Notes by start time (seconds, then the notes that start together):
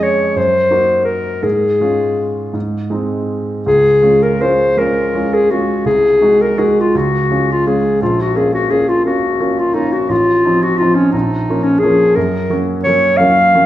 Already playing: F2 G#3 C#4 G#4
0.03 C#5
0.36 F#2 C5
0.71 A#3 D#4 F#4
1.05 A#4
1.43 G#2 G#4
1.81 G#3 C#4 F4
2.54 G#2
2.90 G#3 C4 D#4
3.66 C#2 G#4
4.02 G#3 C#4 F4
4.23 A#4
4.40 G#3 C#4 F4 C5
4.77 G#3 C#4 F4 A#4
5.15 G#3 C#4 F4
5.34 G#4
5.50 G#3 C#4 F4 F#4
5.85 C2 G#4
6.21 G#3 D#4 F#4
6.42 A#4
6.57 G#3 D#4 F#4 G#4
6.80 F4
6.95 C#2 F#4
7.31 G#3 C#4 F4
7.52 F4
7.66 G#3 C#4 F4 G#4
8.02 A#1 F4
8.21 F#4
8.35 A#3 C#4 F4 G#4
8.54 F#4
8.70 A#3 C#4 F4 G#4
8.89 F4
9.05 A#3 C#4 F4 F#4
9.40 A#3 C#4 F4
9.59 F4
9.74 A#3 C#4 D#4 F4
9.93 F#4
10.09 A1 F4
10.45 F3 C4 D#4
10.63 F#4
10.78 F3 C4 D#4 F4
10.95 C#4
11.12 A#1 D#4
11.49 F3 A#3 C#4
11.64 C#4
11.79 F3 G#4
11.83 A#3 C#4
12.16 F#2 A#4
12.50 F#3 A#3 C#4
12.84 F#3 A#3 C#4 C#5
13.17 F#3 A#3 C#4 F5
13.55 F#3 A#3 C#4